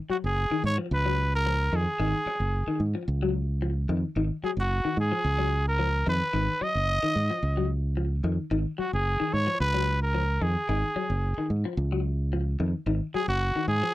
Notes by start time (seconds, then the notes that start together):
0.09 F#3 F#4, muted fingered electric bass stroke
0.24 F#1 G#4
0.50 D#3, muted fingered electric bass stroke
0.64 G#2 C#5
0.78 F3
0.91 C#2 B4
1.06 F#3
1.35 A#4
1.46 F3
1.73 F2 D#3 G#4
1.99 G#1 D#3
2.26 muted fingered electric bass stroke, muted clean electric guitar stroke
2.40 F#1
2.67 D#3, muted fingered electric bass stroke
2.80 G#2
2.95 F3
3.08 C#2
3.23 F#3
3.62 F3
3.89 F2 D#3
4.16 G#1 D#3
4.43 F#3 G#4, muted fingered electric bass stroke
4.57 F#1 F#4
4.85 D#3, muted fingered electric bass stroke
4.97 G#2 G#4
5.12 F3
5.24 C#2
5.38 F#3
5.68 A#4
5.79 F3
6.07 F2 D#3 B4
6.33 G#1 D#3
6.61 F#3 D#5, muted fingered electric bass stroke
6.75 F#1
7.03 D#3
7.16 G#2
7.30 F3
7.43 C#2
7.57 F#3
7.97 F3
8.24 F2 D#3
8.51 G#1 D#3
8.78 F#3 F#4, muted fingered electric bass stroke
8.93 F#1 G#4
9.20 D#3, muted fingered electric bass stroke
9.33 G#2 C#5
9.47 F3
9.60 C#2 B4
9.74 F#3
10.02 A#4
10.15 F3
10.41 F2 D#3 G#4
10.69 G#1 D#3
10.96 F#3, muted fingered electric bass stroke
11.10 F#1
11.37 D#3, muted fingered electric bass stroke
11.50 G#2
11.65 F3
11.77 C#2
11.92 F#3
12.33 F3
12.60 F2 D#3
12.86 G#1 D#3
13.14 F#3 G#4, muted fingered electric bass stroke
13.28 F#1 F#4
13.56 D#3
13.68 G#2 G#4
13.83 F3